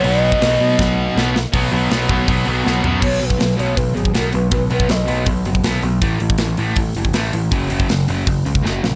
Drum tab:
CC |----------------|----------------|x---------------|----------------|
HH |o---o-----------|o---o---o-------|--o-o-o-o-o-o-o-|o-o-o-o-o-o-o-o-|
SD |----o---o---o-o-|----o-------o---|----o-------o---|----o-------o---|
FT |----------------|--------------o-|----------------|----------------|
BD |---o----o-------|o-----o-o-------|o--o----o--o----|o--o----o--o----|

CC |----------------|----------------|
HH |o-o-o-o-o-o-o-o-|o-o-o-o-o-o-----|
SD |----o-------o---|----o-------o-o-|
FT |----------------|----------------|
BD |o--o----o--o----|o--o----o--o----|